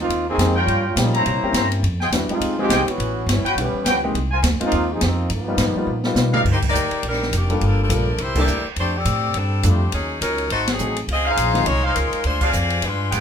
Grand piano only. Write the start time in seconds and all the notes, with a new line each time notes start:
0.38 G#3 A#3 C4 D#4 G4
0.97 G3 A#3 C#4 F4 G4
1.43 A#3 C4 C#4 E4 G4
2.13 G3 B3 D4 E4 F#4
2.30 G#3 C4 D#4 F4 G4
2.59 G#3 C4 D#4 F4 G#4
3.58 G3 B3 C#4 E4 F#5
4.04 G#3 A#3 C4 D#4 G4
4.60 G#3 A#3 C4 D#4 F4
5.48 G3 A#3 B3 D#4 F4
5.77 G3 A#3 B3 D#4 F4
6.05 G3 A#3 B3 D#4 F4
7.50 G3 A#3 D4 F4 A4
7.89 G3 A#3 D4 F4 A4
8.36 G3 A#3 D4 E4 A4
9.64 G3 A3 C4 D4 F4
10.80 F#3 A3 C4 D#4 G#4
11.54 D#3 G#3 C4 C#4 F4